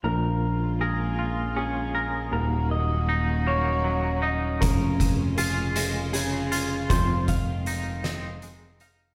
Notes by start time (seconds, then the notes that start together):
0.04 A#1 A#2 C#3 F3 G#3 A#3 F4 A#4
0.81 G#4 A#4
1.19 F4
1.56 C#4 G#4
1.95 A#4
2.32 D#1 D#2 D#3 F#3 C#4 F#4 A#4
2.71 D#5
3.09 D#4
3.47 A#3 C#5
3.84 F#3
4.22 D#4 D#5
4.61 F1 C#2 G#3 F4 A#4, kick, closed hi-hat
5.00 kick, closed hi-hat
5.38 F4 G#4, closed hi-hat
5.76 G#3, closed hi-hat
6.13 C#3 G#4, closed hi-hat
6.52 F4, closed hi-hat
6.90 F1 F2 D#3 F3 G#3 C4 C5, kick, closed hi-hat
7.28 F5, kick, closed hi-hat
7.66 D#4, closed hi-hat
8.04 C4 D#5, snare, closed hi-hat
8.42 G#3, closed hi-hat
8.80 D#4 F5, closed hi-hat